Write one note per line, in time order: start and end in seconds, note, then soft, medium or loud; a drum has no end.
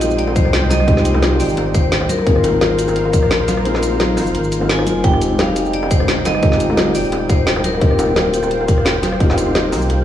0.00 0.37 A#1 loud
0.00 0.87 G#3 loud
0.00 2.07 G#3 medium
0.00 0.87 C4 medium
0.00 0.88 D#4 medium
0.00 2.07 D#4 medium
0.00 0.89 F4 medium
0.00 0.89 G4 loud
0.00 2.07 C5 medium
0.00 0.19 D#5 loud
0.00 2.07 G5 medium
0.00 closed hi-hat medium
0.00 high bongo medium
0.00 shaker medium
0.11 shaker soft
0.18 0.26 D5 loud
0.18 closed hi-hat medium
0.27 high bongo medium
0.36 1.41 C2 medium
0.36 0.72 C5 loud
0.36 kick loud
0.36 closed hi-hat medium
0.36 shaker medium
0.45 cross-stick soft
0.45 high bongo medium
0.53 snare loud
0.53 closed hi-hat medium
0.69 1.19 D#5 loud
0.69 snare soft
0.69 closed hi-hat medium
0.69 high bongo medium
0.69 high conga medium
0.69 shaker medium
0.80 cross-stick soft
0.87 1.11 G#3 medium
0.87 1.12 C4 medium
0.87 1.12 D#4 medium
0.87 1.13 F4 medium
0.87 1.13 G4 medium
0.87 kick loud
0.87 closed hi-hat medium
0.87 high bongo medium
0.97 cross-stick soft
0.97 snare soft
1.05 closed hi-hat loud
1.05 shaker medium
1.12 2.07 G#3 medium
1.12 2.08 C4 medium
1.12 2.08 D#4 medium
1.12 high bongo medium
1.16 2.09 F4 medium
1.16 2.10 G4 medium
1.22 snare loud
1.22 closed hi-hat medium
1.22 high conga medium
1.32 high bongo medium
1.40 2.08 G#1 medium
1.40 1.76 D5 loud
1.40 open hi-hat medium
1.40 shaker medium
1.49 shaker soft
1.57 closed hi-hat medium
1.57 high bongo medium
1.74 2.10 C5 medium
1.74 kick loud
1.74 closed hi-hat medium
1.74 high bongo medium
1.74 shaker medium
1.92 snare loud
1.92 closed hi-hat medium
2.01 cross-stick medium
2.01 high bongo medium
2.09 3.44 A#4 medium
2.09 5.01 A#4 medium
2.09 5.01 C5 medium
2.09 5.01 F5 medium
2.09 closed hi-hat medium
2.09 high conga medium
2.09 shaker medium
2.18 high bongo medium
2.25 3.15 G#1 loud
2.25 2.49 A#3 loud
2.25 2.50 C4 medium
2.25 2.51 D#4 medium
2.25 2.51 F4 medium
2.25 2.52 G#4 loud
2.25 kick loud
2.25 closed hi-hat medium
2.36 cross-stick soft
2.44 closed hi-hat loud
2.44 high bongo medium
2.44 shaker medium
2.51 3.62 A#3 medium
2.51 3.63 C4 medium
2.51 3.63 D#4 medium
2.55 3.64 F4 medium
2.55 3.65 G#4 medium
2.61 snare loud
2.61 closed hi-hat medium
2.61 high bongo medium
2.61 high conga medium
2.79 closed hi-hat loud
2.79 shaker medium
2.88 high bongo medium
2.88 shaker soft
2.96 closed hi-hat medium
3.05 high bongo medium
3.13 4.19 A#1 medium
3.13 kick loud
3.13 closed hi-hat medium
3.13 shaker medium
3.23 cross-stick soft
3.31 snare loud
3.31 closed hi-hat medium
3.31 high bongo medium
3.48 snare soft
3.48 closed hi-hat loud
3.48 high bongo medium
3.48 high conga medium
3.48 shaker medium
3.57 cross-stick soft
3.64 3.88 A#3 medium
3.64 3.89 C4 medium
3.64 3.90 D#4 medium
3.64 3.90 F4 medium
3.64 3.91 G#4 medium
3.64 closed hi-hat medium
3.74 cross-stick soft
3.74 snare soft
3.74 high bongo medium
3.83 closed hi-hat loud
3.83 shaker medium
3.89 4.57 A#3 medium
3.89 4.59 C4 medium
3.89 4.60 D#4 medium
3.89 high bongo medium
3.93 4.60 F4 medium
3.93 4.61 G#4 medium
4.00 snare loud
4.00 closed hi-hat medium
4.00 high conga medium
4.17 4.34 F1 medium
4.17 open hi-hat medium
4.17 high bongo medium
4.17 shaker medium
4.27 shaker soft
4.34 4.88 G#1 loud
4.34 closed hi-hat medium
4.34 high bongo soft
4.44 shaker soft
4.52 closed hi-hat medium
4.52 shaker medium
4.59 5.01 A#3 medium
4.59 5.01 C4 medium
4.59 5.02 D#4 medium
4.59 high bongo medium
4.63 5.03 F4 medium
4.63 5.04 G#4 medium
4.69 5.05 G#5 loud
4.69 snare loud
4.69 closed hi-hat medium
4.78 cross-stick medium
4.78 high bongo medium
4.86 5.03 F1 loud
4.86 closed hi-hat medium
4.86 high conga medium
4.86 shaker medium
5.03 5.92 F1 loud
5.03 5.26 G#3 loud
5.03 7.79 G#3 medium
5.03 5.28 C4 medium
5.03 7.79 D#4 medium
5.03 5.29 D#4 medium
5.03 5.29 F4 medium
5.03 5.29 G4 loud
5.03 5.40 G5 loud
5.03 10.04 G5 medium
5.03 kick loud
5.03 closed hi-hat medium
5.13 cross-stick soft
5.13 high bongo soft
5.22 closed hi-hat loud
5.22 shaker medium
5.28 6.39 G#3 medium
5.28 6.40 C4 medium
5.28 6.41 D#4 medium
5.32 6.42 F4 medium
5.32 6.42 G4 medium
5.38 5.75 F5 loud
5.38 snare loud
5.38 closed hi-hat medium
5.38 high bongo medium
5.38 high conga medium
5.55 closed hi-hat loud
5.55 high bongo medium
5.55 shaker medium
5.66 shaker soft
5.73 5.82 D5 loud
5.73 closed hi-hat medium
5.83 high bongo medium
5.91 6.96 G1 medium
5.91 6.27 C5 loud
5.91 kick loud
5.91 closed hi-hat loud
5.91 shaker medium
6.00 cross-stick soft
6.00 high bongo medium
6.08 snare loud
6.08 closed hi-hat medium
6.25 6.74 D#5 loud
6.25 snare soft
6.25 closed hi-hat loud
6.25 high bongo medium
6.25 high conga medium
6.25 shaker medium
6.35 cross-stick soft
6.42 6.65 G#3 medium
6.42 6.67 C4 medium
6.42 6.67 D#4 medium
6.42 6.68 F4 medium
6.42 6.68 G4 medium
6.42 kick loud
6.42 closed hi-hat medium
6.42 high bongo medium
6.52 cross-stick soft
6.52 snare soft
6.60 closed hi-hat loud
6.60 shaker medium
6.67 7.78 G#3 medium
6.67 7.79 C4 medium
6.67 7.80 D#4 medium
6.67 high bongo medium
6.71 7.80 F4 medium
6.71 7.81 G4 medium
6.77 snare loud
6.77 closed hi-hat medium
6.77 high conga medium
6.87 high bongo medium
6.95 7.80 D#1 medium
6.95 7.27 D5 loud
6.95 open hi-hat medium
6.95 shaker medium
7.04 shaker soft
7.12 closed hi-hat medium
7.12 high bongo medium
7.29 7.65 C5 loud
7.29 kick loud
7.29 closed hi-hat medium
7.29 high bongo medium
7.29 shaker medium
7.47 snare loud
7.47 closed hi-hat medium
7.56 cross-stick medium
7.56 high bongo medium
7.64 8.99 A#4 medium
7.64 closed hi-hat medium
7.64 high conga medium
7.64 shaker medium
7.74 high bongo medium
7.80 8.70 D#1 loud
7.80 8.04 A#3 loud
7.80 8.05 C4 medium
7.80 8.06 D#4 medium
7.80 8.06 F4 medium
7.80 8.07 G4 loud
7.80 10.04 C5 medium
7.80 10.04 F5 medium
7.80 kick loud
7.80 closed hi-hat medium
7.91 cross-stick soft
7.99 closed hi-hat medium
7.99 high bongo medium
7.99 shaker medium
8.06 9.17 A#3 medium
8.06 9.18 C4 medium
8.06 9.18 D#4 medium
8.10 9.19 F4 medium
8.10 9.20 G4 medium
8.16 snare loud
8.16 closed hi-hat medium
8.16 high bongo medium
8.16 high conga medium
8.34 closed hi-hat medium
8.34 shaker medium
8.43 high bongo medium
8.43 shaker soft
8.51 closed hi-hat medium
8.61 high bongo medium
8.68 9.74 F1 medium
8.68 kick loud
8.68 closed hi-hat medium
8.68 shaker medium
8.78 cross-stick soft
8.85 snare loud
8.85 closed hi-hat medium
8.85 high bongo medium
9.02 snare soft
9.02 closed hi-hat medium
9.02 high bongo medium
9.02 high conga medium
9.02 shaker medium
9.12 cross-stick medium
9.19 9.43 A#3 medium
9.19 9.44 C4 medium
9.19 9.45 D#4 medium
9.19 9.45 F4 medium
9.19 9.45 G4 medium
9.19 kick loud
9.19 closed hi-hat medium
9.30 cross-stick soft
9.30 snare soft
9.30 high bongo medium
9.38 closed hi-hat medium
9.38 shaker medium
9.44 10.04 A#3 medium
9.44 10.04 C4 medium
9.44 10.04 D#4 medium
9.44 high bongo medium
9.49 10.04 F4 medium
9.49 10.04 G4 medium
9.55 snare loud
9.55 closed hi-hat medium
9.55 high conga medium
9.72 10.04 C2 medium
9.72 open hi-hat medium
9.72 high bongo medium
9.72 shaker medium
9.82 shaker soft
9.89 closed hi-hat medium
9.89 high bongo medium